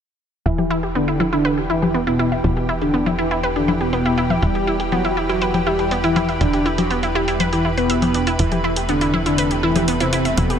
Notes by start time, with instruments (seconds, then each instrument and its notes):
0.46 analog synth bass E1, synth drone E2, analog synth pad E3 G4 B4, supersaw synth E3, analog synth lead E4, synth arpeggio sound E4, closed hi-hat
0.58 synth arpeggio sound G4, closed hi-hat, low conga
0.70 synth arpeggio sound E4
0.83 synth arpeggio sound G4, closed hi-hat
0.95 supersaw synth D3, synth arpeggio sound B3, analog synth lead D4, closed hi-hat
1.08 synth arpeggio sound E4, closed hi-hat
1.20 synth arpeggio sound E4, low conga
1.33 supersaw synth D3, analog synth lead D4, synth arpeggio sound E4, closed hi-hat
1.45 synth arpeggio sound B4, closed hi-hat
1.57 synth arpeggio sound G4, closed hi-hat
1.70 supersaw synth E3, synth arpeggio sound E4, analog synth lead E4
1.82 synth arpeggio sound G4, closed hi-hat, low conga
1.94 synth arpeggio sound B3, closed hi-hat
2.07 supersaw synth B2, analog synth lead B3, synth arpeggio sound E4, closed hi-hat
2.19 synth arpeggio sound E4, closed hi-hat
2.32 synth arpeggio sound E5, closed hi-hat
2.44 analog synth bass E1, supersaw synth B2, analog synth lead B3, synth arpeggio sound E4, closed hi-hat, low conga
2.57 synth arpeggio sound G4, closed hi-hat
2.69 synth arpeggio sound E4
2.81 supersaw synth D3, analog synth lead D4, synth arpeggio sound G4, closed hi-hat
2.94 synth arpeggio sound B3, closed hi-hat
3.06 synth arpeggio sound E4, closed hi-hat, low conga
3.18 supersaw synth E3, analog synth lead E4, synth arpeggio sound E4
3.31 synth arpeggio sound E4, closed hi-hat
3.43 synth arpeggio sound B4, closed hi-hat
3.56 supersaw synth D3, analog synth lead D4, synth arpeggio sound G4, closed hi-hat
3.68 synth arpeggio sound E4, low conga
3.81 supersaw synth B2, analog synth lead B3, synth arpeggio sound G4, closed hi-hat
3.93 synth arpeggio sound B3, closed hi-hat
4.05 synth arpeggio sound E4, closed hi-hat
4.18 synth arpeggio sound E4, closed hi-hat
4.30 synth arpeggio sound E5, closed hi-hat, low conga
4.42 analog synth bass E1, supersaw synth G3, synth arpeggio sound E4, analog synth lead G4, closed hi-hat
4.55 synth arpeggio sound G4, closed hi-hat
4.67 synth arpeggio sound E4
4.80 synth arpeggio sound G4, closed hi-hat
4.92 supersaw synth F#3, synth arpeggio sound B3, analog synth lead F#4, closed hi-hat, low conga
5.05 synth arpeggio sound E4, closed hi-hat
5.17 synth arpeggio sound E4
5.29 supersaw synth F#3, synth arpeggio sound E4, analog synth lead F#4, closed hi-hat
5.42 synth arpeggio sound B4, closed hi-hat
5.54 synth arpeggio sound G4, closed hi-hat, low conga
5.66 supersaw synth G3, synth arpeggio sound E4, analog synth lead G4
5.79 synth arpeggio sound G4, closed hi-hat
5.91 synth arpeggio sound B3, closed hi-hat
6.04 supersaw synth E3, analog synth lead E4, synth arpeggio sound E4, closed hi-hat
6.16 synth arpeggio sound E4, closed hi-hat, low conga
6.29 synth arpeggio sound E5, closed hi-hat
6.41 analog synth bass E1, supersaw synth D3, analog synth lead D4, synth arpeggio sound E4, closed hi-hat
6.53 synth arpeggio sound G4, closed hi-hat
6.66 synth arpeggio sound E4, closed hi-hat
6.78 supersaw synth F#3, analog synth lead F#4, synth arpeggio sound G4, closed hi-hat, low conga
6.90 synth arpeggio sound B3, closed hi-hat
7.03 synth arpeggio sound E4, closed hi-hat
7.15 supersaw synth G3, synth arpeggio sound E4, analog synth lead G4
7.28 synth arpeggio sound E4, closed hi-hat
7.40 synth arpeggio sound B4, closed hi-hat, low conga
7.53 supersaw synth E3, analog synth lead E4, synth arpeggio sound G4, closed hi-hat
7.65 synth arpeggio sound E4
7.77 supersaw synth B2, analog synth lead B3, synth arpeggio sound B4, closed hi-hat
7.90 synth arpeggio sound E5, closed hi-hat
8.02 synth arpeggio sound G4, closed hi-hat, low conga
8.14 synth arpeggio sound D4, closed hi-hat
8.27 synth arpeggio sound E4, closed hi-hat
8.39 analog synth bass E1, analog synth pad C3 A3, supersaw synth E3, synth arpeggio sound E4, analog synth lead E4, closed hi-hat
8.52 synth arpeggio sound G4, closed hi-hat, low conga
8.64 synth arpeggio sound E4
8.76 synth arpeggio sound G4, closed hi-hat
8.89 supersaw synth D3, synth arpeggio sound B3, analog synth lead D4, closed hi-hat
9.01 synth arpeggio sound E4, closed hi-hat
9.13 synth arpeggio sound E4, low conga
9.26 supersaw synth D3, analog synth lead D4, synth arpeggio sound E4, closed hi-hat
9.38 synth arpeggio sound B4, closed hi-hat
9.51 synth arpeggio sound G4, closed hi-hat
9.63 supersaw synth E3, synth arpeggio sound E4, analog synth lead E4
9.76 synth arpeggio sound G4, closed hi-hat, low conga
9.88 synth arpeggio sound B3, closed hi-hat
10.00 supersaw synth C3, analog synth lead C4, synth arpeggio sound E4, closed hi-hat
10.13 synth arpeggio sound E4, closed hi-hat
10.25 synth arpeggio sound E5, closed hi-hat
10.37 analog synth bass E1, supersaw synth B2, analog synth lead B3, synth arpeggio sound E4, closed hi-hat, low conga
10.50 synth arpeggio sound G4, closed hi-hat